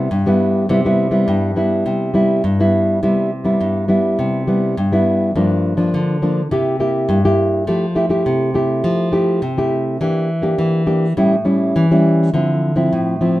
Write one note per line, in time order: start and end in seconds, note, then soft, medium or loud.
0.11 0.66 G2 medium
0.26 0.65 G3 medium
0.26 0.65 B3 medium
0.26 0.65 E4 medium
0.69 1.24 C3 medium
0.69 0.79 G3 medium
0.69 0.79 B3 medium
0.69 0.80 E4 medium
0.85 1.09 G3 medium
0.85 1.09 B3 medium
0.85 1.09 E4 medium
1.11 1.51 G3 medium
1.11 1.51 B3 medium
1.11 1.51 E4 medium
1.28 1.83 G2 medium
1.56 2.10 G3 medium
1.56 2.10 B3 medium
1.56 2.10 E4 medium
1.86 2.41 C3 medium
2.14 2.41 G3 medium
2.14 2.42 B3 medium
2.14 2.42 E4 medium
2.44 2.99 G2 medium
2.60 2.98 G3 medium
2.60 2.98 B3 medium
2.60 2.98 E4 medium
3.03 3.58 C3 medium
3.03 3.30 G3 soft
3.03 3.30 B3 soft
3.03 3.30 E4 medium
3.44 3.84 G3 medium
3.44 3.84 B3 medium
3.44 3.84 E4 medium
3.61 4.16 G2 medium
3.88 4.42 G3 medium
3.88 4.43 B3 medium
3.88 4.43 E4 medium
4.19 4.74 C3 medium
4.47 4.75 G3 medium
4.47 4.75 B3 medium
4.47 4.75 E4 medium
4.77 5.32 G2 medium
4.92 5.31 G3 medium
4.92 5.31 B3 medium
4.92 5.31 E4 medium
5.35 5.90 G2 medium
5.35 5.74 F3 medium
5.35 5.74 A#3 medium
5.35 5.75 D4 medium
5.77 6.17 F3 medium
5.77 6.17 A#3 medium
5.77 6.17 D4 medium
5.94 6.49 D3 medium
6.22 6.41 F3 medium
6.22 6.41 A#3 medium
6.22 6.41 D4 medium
6.51 7.07 C3 medium
6.51 6.76 A#3 medium
6.51 6.76 E4 medium
6.51 6.76 G4 medium
6.80 7.19 A#3 medium
6.80 7.19 E4 soft
6.80 7.19 G4 medium
7.09 7.64 G2 medium
7.24 7.63 A#3 medium
7.24 7.64 E4 medium
7.24 7.64 G4 medium
7.67 8.23 F3 medium
7.67 7.85 A3 medium
7.67 7.85 E4 medium
7.67 7.85 G4 medium
7.95 8.05 A3 medium
7.95 8.05 E4 medium
7.95 8.05 G4 medium
8.09 8.49 A3 medium
8.09 8.50 E4 medium
8.09 8.50 G4 medium
8.26 8.81 C3 medium
8.54 9.08 A3 medium
8.54 9.09 E4 medium
8.54 9.09 G4 medium
8.84 9.39 F3 medium
9.12 9.40 A3 medium
9.12 9.40 E4 medium
9.12 9.40 G4 medium
9.42 9.98 C3 medium
9.57 9.96 A3 medium
9.57 9.96 E4 medium
9.57 9.97 G4 medium
10.01 10.56 E3 medium
10.01 10.28 A#3 medium
10.01 10.28 D4 soft
10.01 10.28 G4 medium
10.42 10.82 A#3 medium
10.42 10.82 D4 medium
10.42 10.83 G4 medium
10.59 11.14 E3 medium
10.86 11.06 A#3 medium
10.86 11.06 D4 medium
10.86 11.06 G4 medium
11.17 11.72 A2 medium
11.17 11.34 G3 medium
11.17 11.35 C#4 medium
11.17 11.35 E4 medium
11.45 11.84 G3 medium
11.45 11.85 C#4 medium
11.45 11.85 E4 medium
11.76 12.31 E3 medium
11.91 12.30 G3 medium
11.91 12.30 C#4 medium
11.91 12.30 E4 medium
12.34 12.89 D3 medium
12.34 12.73 F3 soft
12.34 12.73 C4 medium
12.34 12.73 E4 medium
12.76 13.16 F3 medium
12.76 13.16 C4 medium
12.76 13.16 E4 medium
12.93 13.40 A2 medium
13.21 13.40 F3 medium
13.21 13.40 C4 medium
13.21 13.40 E4 medium